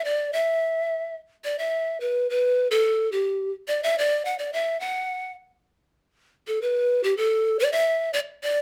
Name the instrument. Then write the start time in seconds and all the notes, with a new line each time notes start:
pan flute
0.05 D5
0.33 E5
1.44 D5
1.58 E5
2.00 B4
2.30 B4
2.71 A4
3.12 G4
3.68 D5
3.83 E5
3.98 D5
4.25 F#5
4.39 D5
4.53 E5
4.80 F#5
6.47 A4
6.61 B4
7.03 G4
7.17 A4
7.59 D5
7.72 E5
8.13 D5
8.43 D5